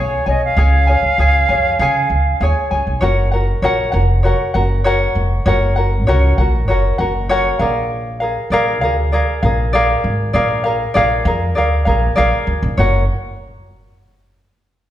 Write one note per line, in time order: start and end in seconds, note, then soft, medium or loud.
0.00 0.21 B1 medium
0.00 0.27 G#4 medium
0.00 0.26 C#5 medium
0.00 0.28 C#5 medium
0.00 0.25 G#5 medium
0.26 0.52 B1 medium
0.26 0.56 G#4 soft
0.26 0.57 C#5 soft
0.26 0.42 D#5 medium
0.26 0.57 G#5 soft
0.45 2.38 F5 medium
0.57 0.94 C#2 medium
0.57 0.88 G#4 medium
0.57 0.88 C#5 medium
0.57 0.87 F5 medium
0.57 0.86 G#5 medium
0.87 1.18 G#4 soft
0.87 1.19 C#5 soft
0.87 1.18 G#5 soft
1.03 1.15 C#2 medium
1.18 1.43 C#2 medium
1.18 1.49 G#4 medium
1.18 1.49 C#5 medium
1.18 1.49 F5 medium
1.18 1.47 G#5 medium
1.49 1.74 F2 medium
1.49 1.79 G#4 soft
1.49 1.80 C#5 soft
1.49 1.79 G#5 medium
1.79 2.04 C#3 medium
1.79 2.41 G#4 medium
1.79 2.43 C#5 medium
1.79 2.40 F5 medium
1.79 2.40 G#5 medium
2.10 2.35 C#2 medium
2.40 2.53 D#2 medium
2.40 2.72 G#4 medium
2.40 2.71 C#5 medium
2.40 2.44 F5 medium
2.40 2.70 G#5 medium
2.71 2.84 C#2 medium
2.71 3.01 G#4 soft
2.71 2.99 C#5 soft
2.71 3.02 G#5 soft
2.87 2.99 B1 medium
3.01 3.52 F#1 medium
3.01 3.32 F#4 medium
3.01 3.32 A#4 medium
3.01 3.32 C#5 medium
3.01 3.30 F#5 medium
3.32 3.62 F#4 soft
3.32 3.63 A#4 medium
3.32 3.62 F#5 medium
3.62 3.88 A#1 medium
3.62 3.94 F#4 medium
3.62 3.93 A#4 medium
3.62 3.93 C#5 medium
3.62 3.91 F#5 medium
3.92 4.31 F1 medium
3.92 4.23 F#4 soft
3.92 4.24 A#4 soft
3.92 4.23 F#5 medium
4.23 4.55 F#4 medium
4.23 4.54 A#4 medium
4.23 4.54 C#5 medium
4.23 4.53 F#5 medium
4.54 5.05 F#1 medium
4.54 4.84 F#4 soft
4.54 4.85 A#4 medium
4.54 4.85 F#5 medium
4.84 5.45 F#4 medium
4.84 5.47 A#4 medium
4.84 5.44 C#5 medium
4.84 5.46 F#5 loud
5.15 5.41 F1 medium
5.46 6.09 F#1 medium
5.46 5.77 F#4 medium
5.46 5.76 A#4 medium
5.46 5.76 C#5 medium
5.46 5.75 F#5 medium
5.76 6.07 F#4 soft
5.76 6.07 A#4 medium
5.76 6.07 F#5 medium
6.07 6.33 C#2 medium
6.07 6.38 F#4 medium
6.07 6.38 A#4 medium
6.07 6.38 C#5 medium
6.07 6.37 F#5 medium
6.38 6.68 A#1 medium
6.38 6.68 F#4 soft
6.38 6.69 A#4 soft
6.38 6.68 F#5 medium
6.68 6.93 F#1 medium
6.68 6.99 F#4 medium
6.68 6.99 A#4 medium
6.68 6.99 C#5 medium
6.68 6.97 F#5 medium
6.98 7.49 F#1 medium
6.98 7.29 F#4 medium
6.98 7.29 A#4 medium
6.98 7.29 F#5 medium
7.29 7.60 F#4 medium
7.29 7.59 A#4 loud
7.29 7.60 C#5 medium
7.29 7.59 F#5 medium
7.59 8.35 A#1 medium
7.59 8.22 G#4 medium
7.59 8.21 A#4 medium
7.59 8.22 D5 medium
7.59 8.19 F5 medium
8.20 8.51 G#4 soft
8.20 8.52 A#4 medium
8.20 8.51 F5 medium
8.50 8.82 A#1 medium
8.50 8.83 G#4 medium
8.50 8.82 A#4 loud
8.50 8.82 D5 medium
8.50 8.80 F5 loud
8.81 9.20 D2 loud
8.81 9.12 G#4 soft
8.81 9.13 A#4 medium
8.81 9.12 F5 medium
9.12 9.43 G#4 medium
9.12 9.43 A#4 medium
9.12 9.43 D5 medium
9.12 9.41 F5 medium
9.43 9.93 A#1 medium
9.43 9.73 G#4 medium
9.43 9.74 A#4 medium
9.43 9.73 F5 medium
9.73 10.33 G#4 medium
9.73 10.35 A#4 medium
9.73 10.32 D5 medium
9.73 10.34 F5 medium
10.04 10.29 G#1 medium
10.33 10.84 A#1 medium
10.33 10.65 G#4 medium
10.33 10.64 A#4 medium
10.33 10.65 D5 medium
10.33 10.63 F5 medium
10.64 10.94 G#4 medium
10.64 10.95 A#4 medium
10.64 10.95 F5 medium
10.94 11.21 A#1 medium
10.94 11.26 G#4 loud
10.94 11.26 A#4 medium
10.94 11.26 D5 medium
10.94 11.24 F5 loud
11.25 11.56 F2 medium
11.25 11.55 G#4 soft
11.25 11.56 A#4 medium
11.25 11.56 F5 medium
11.55 11.81 D2 loud
11.55 11.87 G#4 medium
11.55 11.86 A#4 medium
11.55 11.87 D5 medium
11.55 11.84 F5 medium
11.85 12.12 A#1 medium
11.85 12.15 G#4 medium
11.85 12.16 A#4 medium
11.85 12.17 F5 medium
12.16 12.30 A#1 medium
12.16 12.78 G#4 medium
12.16 12.79 A#4 loud
12.16 12.77 D5 medium
12.16 12.79 F5 loud
12.47 12.60 D2 medium
12.63 12.76 A#1 medium
12.77 13.07 F#1 medium
12.77 13.03 F#4 medium
12.77 13.04 A#4 medium
12.77 13.03 C#5 medium
12.77 13.04 F#5 medium